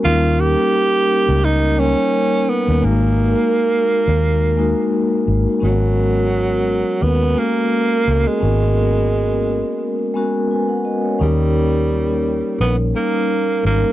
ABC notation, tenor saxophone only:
X:1
M:4/4
L:1/16
Q:"Swing 16ths" 1/4=86
K:D#m
V:1 name="Tenor saxophone"
E2 =G6 D2 C4 B,2 | A,12- A,2 z2 | F,8 B,2 A,4- A, G,- | G,8- G,3 z4 z |
=G,8 B,2 A,4 A,2 |]